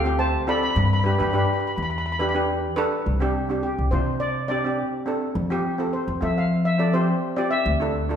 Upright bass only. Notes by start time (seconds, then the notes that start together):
Already playing: D2
0.76 G2
1.20 G2
1.78 E2
3.06 C2
3.78 C2
3.92 C3
5.35 F2
6.08 F2
6.22 F3
7.66 D2